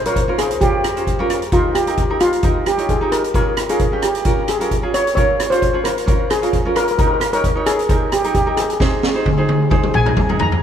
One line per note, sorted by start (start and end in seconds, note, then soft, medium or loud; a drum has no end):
0.00 0.61 A#1 loud
0.05 0.19 C#4 medium
0.05 0.19 F4 medium
0.05 0.40 A#4 loud
0.05 0.19 C#5 medium
0.05 closed hi-hat medium
0.16 kick medium
0.16 closed hi-hat medium
0.28 0.48 C#4 medium
0.28 0.48 F4 medium
0.28 0.49 A#4 medium
0.38 0.62 G#4 loud
0.38 cross-stick medium
0.38 closed hi-hat medium
0.51 closed hi-hat medium
0.61 1.53 F2 medium
0.61 0.82 C#4 medium
0.61 0.83 F4 medium
0.61 1.48 G4 loud
0.61 0.83 A#4 medium
0.61 kick loud
0.61 closed hi-hat medium
0.84 cross-stick medium
0.84 closed hi-hat medium
0.96 1.09 C#4 medium
0.96 1.09 F4 medium
0.96 1.10 C5 medium
0.96 closed hi-hat medium
1.07 kick medium
1.07 closed hi-hat medium
1.19 1.39 C#4 medium
1.19 1.40 F4 medium
1.19 1.40 A#4 loud
1.30 cross-stick medium
1.30 closed hi-hat medium
1.42 closed hi-hat medium
1.52 2.43 D#2 loud
1.52 1.73 D#4 medium
1.52 1.76 F4 loud
1.52 1.73 G4 medium
1.52 1.74 A#4 medium
1.52 kick loud
1.52 closed hi-hat medium
1.75 2.22 G4 medium
1.75 cross-stick medium
1.75 closed hi-hat medium
1.87 2.00 D#4 medium
1.87 2.00 G4 medium
1.87 2.01 A#4 medium
1.87 closed hi-hat medium
1.97 kick medium
1.97 closed hi-hat medium
2.10 2.30 D#4 medium
2.10 2.30 G4 medium
2.10 2.31 A#4 medium
2.20 2.68 F4 loud
2.20 cross-stick medium
2.20 closed hi-hat medium
2.33 closed hi-hat medium
2.43 2.64 D#4 medium
2.43 2.64 G4 medium
2.43 2.64 A#4 medium
2.43 kick loud
2.43 closed hi-hat medium
2.66 2.90 G4 medium
2.66 cross-stick medium
2.66 closed hi-hat medium
2.78 2.91 D#4 medium
2.78 2.91 G4 medium
2.78 2.91 C#5 medium
2.78 closed hi-hat medium
2.89 3.13 G#4 medium
2.89 kick medium
2.89 closed hi-hat medium
3.01 3.21 D#4 medium
3.01 3.22 G4 medium
3.01 3.22 A#4 medium
3.12 3.34 A#4 medium
3.12 cross-stick medium
3.12 closed hi-hat medium
3.24 closed hi-hat medium
3.34 3.55 C#4 medium
3.34 3.55 F4 medium
3.34 3.55 G#4 medium
3.34 3.71 A#4 loud
3.34 kick loud
3.34 closed hi-hat medium
3.57 cross-stick medium
3.57 closed hi-hat medium
3.69 3.82 C#4 medium
3.69 3.82 F4 medium
3.69 4.04 G#4 medium
3.69 3.83 A#4 medium
3.69 closed hi-hat medium
3.79 kick medium
3.79 closed hi-hat medium
3.92 4.12 C#4 medium
3.92 4.12 F4 medium
3.92 4.13 G4 medium
4.02 4.25 G4 medium
4.02 cross-stick medium
4.02 closed hi-hat medium
4.15 closed hi-hat medium
4.25 4.46 C#4 medium
4.25 4.46 F4 medium
4.25 4.46 A#4 medium
4.25 kick loud
4.25 closed hi-hat medium
4.48 4.91 G#4 medium
4.48 cross-stick medium
4.48 closed hi-hat medium
4.60 4.73 C#4 medium
4.60 4.73 F4 medium
4.60 4.74 A#4 medium
4.60 closed hi-hat medium
4.71 kick medium
4.71 closed hi-hat medium
4.82 5.03 C#4 medium
4.82 5.03 F4 medium
4.82 5.03 G#4 medium
4.94 5.14 C#5 loud
4.94 cross-stick medium
4.94 closed hi-hat medium
5.07 closed hi-hat medium
5.15 5.37 C#4 medium
5.15 5.37 F4 medium
5.15 5.37 A#4 medium
5.15 5.52 C#5 loud
5.15 kick loud
5.15 closed hi-hat medium
5.40 cross-stick medium
5.40 closed hi-hat medium
5.50 5.64 C#4 medium
5.50 5.64 F4 medium
5.50 5.85 C5 loud
5.50 5.64 C5 medium
5.50 closed hi-hat medium
5.62 kick medium
5.62 closed hi-hat medium
5.73 5.94 C#4 medium
5.73 5.94 F4 medium
5.73 5.94 G#4 medium
5.84 6.05 A#4 medium
5.84 cross-stick medium
5.84 closed hi-hat medium
5.98 closed hi-hat medium
6.06 6.27 C#4 medium
6.06 6.27 F4 medium
6.06 6.28 A#4 medium
6.06 kick loud
6.06 closed hi-hat medium
6.30 6.77 G#4 loud
6.30 cross-stick medium
6.30 closed hi-hat medium
6.42 6.55 C#4 medium
6.42 6.55 F4 medium
6.42 6.56 A#4 medium
6.42 closed hi-hat medium
6.53 kick medium
6.53 closed hi-hat medium
6.65 6.85 C#4 medium
6.65 6.86 F4 medium
6.65 6.86 A#4 medium
6.76 6.83 A#4 loud
6.76 cross-stick medium
6.76 closed hi-hat medium
6.84 6.90 A#4 medium
6.84 closed hi-hat medium
6.91 6.97 A#4 medium
6.98 7.19 D#4 medium
6.98 7.19 G4 medium
6.98 7.06 A#4 medium
6.98 7.19 A#4 medium
6.98 kick loud
6.98 closed hi-hat medium
7.07 7.12 A#4 medium
7.14 7.19 A#4 medium
7.20 7.28 A#4 medium
7.20 cross-stick medium
7.20 closed hi-hat medium
7.33 7.46 D#4 medium
7.33 7.46 G4 medium
7.33 7.67 A#4 loud
7.33 7.46 C#5 medium
7.33 closed hi-hat medium
7.44 kick medium
7.44 closed hi-hat medium
7.55 7.76 D#4 medium
7.55 7.76 G4 medium
7.55 7.77 C#5 medium
7.66 8.13 G#4 loud
7.66 cross-stick medium
7.66 closed hi-hat medium
7.79 closed hi-hat medium
7.89 8.10 D#4 medium
7.89 8.10 G4 medium
7.89 8.10 A#4 medium
7.89 kick loud
7.89 closed hi-hat medium
8.12 8.33 G4 medium
8.12 cross-stick medium
8.12 closed hi-hat medium
8.24 8.37 D#4 medium
8.24 8.37 G4 medium
8.24 8.37 A#4 medium
8.24 closed hi-hat medium
8.34 8.58 G4 medium
8.34 kick medium
8.34 closed hi-hat medium
8.46 8.67 D#4 medium
8.46 8.67 G4 medium
8.46 8.67 A#4 medium
8.57 8.63 G#4 medium
8.57 cross-stick medium
8.57 closed hi-hat medium
8.64 8.72 G#4 medium
8.70 8.79 G#4 medium
8.70 closed hi-hat medium
8.79 9.00 D#4 medium
8.79 8.87 G#4 medium
8.79 9.01 G#4 medium
8.79 9.01 C5 medium
8.79 kick loud
8.79 snare medium
8.89 8.95 G#4 medium
8.96 9.02 G#4 medium
9.03 9.10 G#4 medium
9.03 snare medium
9.11 9.28 D#4 medium
9.11 9.17 G#4 medium
9.11 9.28 G#4 medium
9.15 9.25 G#4 medium
9.15 9.28 C5 medium
9.26 9.32 G#4 medium
9.26 kick medium
9.26 high tom medium
9.33 9.40 G#4 medium
9.37 9.58 D#4 medium
9.37 9.58 G#4 medium
9.37 9.47 G#4 medium
9.37 9.58 C5 medium
9.48 9.54 G#4 medium
9.48 high tom medium
9.55 9.61 G#4 medium
9.62 9.69 G#4 medium
9.70 9.91 D#4 medium
9.70 9.75 G#4 medium
9.70 9.92 G#4 medium
9.70 9.92 C5 medium
9.70 kick loud
9.70 mid tom medium
9.76 9.83 G#4 medium
9.83 9.90 G#4 medium
9.83 mid tom medium
9.92 10.15 A#1 medium
9.92 9.97 G#4 medium
9.92 10.41 G#5 loud
9.92 mid tom medium
9.98 10.05 G#4 medium
10.05 10.19 D#4 medium
10.05 10.19 G#4 medium
10.05 10.12 G#4 medium
10.05 10.19 A#4 medium
10.05 mid tom medium
10.13 10.37 C2 medium
10.13 10.19 G#4 medium
10.13 kick medium
10.13 mid tom medium
10.20 10.28 G#4 medium
10.29 10.49 D#4 medium
10.29 10.49 G#4 medium
10.29 10.50 A#4 medium
10.29 floor tom medium
10.39 10.60 D#2 medium
10.39 10.61 A#5 loud
10.39 floor tom loud
10.52 floor tom medium